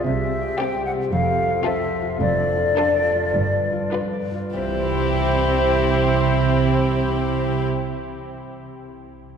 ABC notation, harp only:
X:1
M:4/4
L:1/8
Q:1/4=98
K:C
V:1 name="Harp"
(3[C,Cc] C G (3c G C (3F,, C F (3A c F | (3F,, D F (3A d F (3G,, D F (3B d F | [C,CEGcg]8- | [C,CEGcg]8 |]